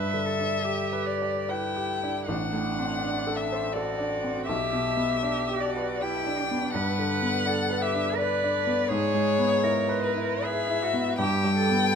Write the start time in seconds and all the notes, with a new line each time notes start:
Already playing: G2 B4 E5
0.14 D3
0.26 A4
0.39 D4
0.64 G4
0.93 B4
1.07 D5
1.22 D5
1.49 E4 B4 G5
1.76 G4
2.03 D4
2.26 A1 D4 F#5
2.53 A2
2.79 C4
3.03 D4
3.27 A4
3.36 E5
3.52 C5
3.73 F#4 A4 D5
3.99 D4
4.24 C4
4.46 B1 G4 E5
4.73 B2
4.97 B3
5.23 D4 G4
5.49 G4
5.61 D5
5.65 F#4
5.77 B4
6.02 E4 G4 G5
6.27 D4
6.39 D4
6.51 B3
6.74 G2 B4 F#5
6.99 D3
7.10 B4
7.22 B3
7.46 D4 A4
7.71 B4
7.82 G4 E5
7.95 D4
8.18 B4 D5
8.44 D4
8.67 B3
8.89 G#2 G#4 C#5
9.14 G#3
9.39 B3
9.63 E4 A#4
9.89 B4
10.03 B4
10.16 E4
10.43 G#4 B4 E5
10.68 E4
10.83 F#4
10.94 B3
11.18 G2 G4 G5
11.44 G3
11.56 A4
11.70 B3